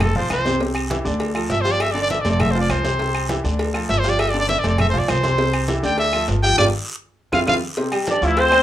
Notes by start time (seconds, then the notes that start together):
Already playing: F1 A4 C5
0.00 A4, cowbell, high conga, low conga, low agogo, long guiro, claves
0.16 B1 F3 F4 C5 F5, high conga, low conga
0.30 C2 C5, cowbell, high conga, low timbale, low agogo, short guiro, claves
0.45 C3 C4 C5, cowbell, high conga, short guiro
0.60 C3 C4 C5, cowbell, high conga, long guiro
0.75 high conga, low agogo, claves
0.90 E3 E4 G4, cowbell, high conga, low timbale, low agogo, short guiro
1.05 D2 D3 D4 D5, high conga, short guiro
1.20 cowbell, high conga, low agogo, long guiro
1.35 F3 F4 A4, high conga, low agogo, claves
1.50 G1 E5, cowbell, high conga, low timbale, short guiro
1.61 F3 F4 G4 C5, cowbell, high conga, short guiro
1.72 D5
1.80 E5, cowbell, high conga, low agogo, long guiro, claves
1.92 D3 D4 D5, high conga, low agogo
2.02 D5
2.10 E5, cowbell, high conga, low timbale, short guiro
2.21 F1 A3 D5
2.25 A4 C5, cowbell, high conga, low agogo, short guiro
2.31 D5
2.40 E5, cowbell, high conga, low conga, low agogo, long guiro, claves
2.51 F3 F4 C5
2.56 F5
2.61 D5
2.69 C2 C5, cowbell, high conga, low timbale, low agogo, short guiro, claves
2.84 C3 C4 C5, cowbell, high conga, short guiro
2.99 C3 C4 C5, cowbell, high conga, long guiro
3.14 high conga, low agogo, claves
3.29 E3 E4 G4, cowbell, high conga, low timbale, low agogo, short guiro
3.44 D2 D3 D4 D5, high conga, short guiro
3.59 cowbell, high conga, low agogo, long guiro
3.74 F3 F4 A4, high conga, low agogo, claves
3.89 G1 E5, cowbell, high conga, low timbale, short guiro
3.99 C5
4.04 F3 F4 G4, cowbell, high conga, short guiro
4.10 D5
4.19 E5, cowbell, high conga, low agogo, long guiro, claves
4.30 D5
4.34 D3 D4 D5, high conga, low agogo
4.40 D5
4.49 E5, cowbell, high conga, low timbale, short guiro
4.59 D5
4.63 F1 A3 A4 C5, cowbell, high conga, low agogo, short guiro
4.69 D5
4.78 E5, cowbell, high conga, low conga, low agogo, long guiro, claves
4.90 F3 C5
4.94 B1 F4 F5, high conga, low conga
4.99 D5
5.08 C2 C5, cowbell, high conga, low timbale, low agogo, short guiro, claves
5.23 C3 C4 C5, cowbell, high conga, short guiro
5.38 C3 C4 C5, cowbell, long guiro
5.54 high conga, low agogo, claves
5.68 E3 E4 G4, cowbell, high conga, low timbale, low agogo, short guiro
5.83 D2 D3 D4 D5 G5, short guiro
5.98 E5, cowbell, high conga, low agogo, long guiro
6.13 F3 F4 A4, high conga, low agogo, claves
6.28 G1, cowbell, high conga, low timbale, short guiro
6.43 F3 F4 G4 G5, cowbell, high conga, short guiro
6.58 G1 D4 F4 G4 D5, cowbell, high conga, high timbale, long guiro, claves
7.32 F2 C4 E4 F4 F5, cowbell, high conga, high timbale, long guiro, claves
7.46 F2 C4 E4 F4 F5, cowbell, high conga, high timbale, long guiro, claves
7.77 C3 C4 C5, cowbell, high conga, long guiro
7.92 G3 G4 G5, high conga, low agogo, claves
8.07 D4 D5, cowbell, high conga, low timbale, low agogo, short guiro
8.22 D2 E3 F3 E4 F4 F5, high conga, short guiro
8.37 C4 C5, cowbell, high conga, low agogo, long guiro
8.51 C4 C5 C6, high conga, low agogo, claves